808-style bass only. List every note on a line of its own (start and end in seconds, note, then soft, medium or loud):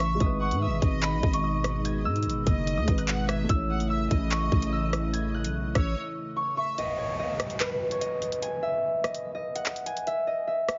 0.00 0.18 A1 loud
0.20 0.53 G#1 loud
0.51 0.68 G#2 loud
0.67 0.81 G#1 loud
0.82 1.14 G#1 loud
1.13 1.23 A1 loud
1.23 2.07 G#1 loud
2.05 2.27 G#2 loud
2.26 2.45 G#1 loud
2.47 2.79 F#1 loud
2.77 2.87 D#2 loud
2.88 3.47 G#1 loud
3.49 4.08 A1 loud
4.11 4.50 A1 loud
4.52 5.46 A1 loud
5.44 5.74 B1 loud
5.75 5.95 A1 loud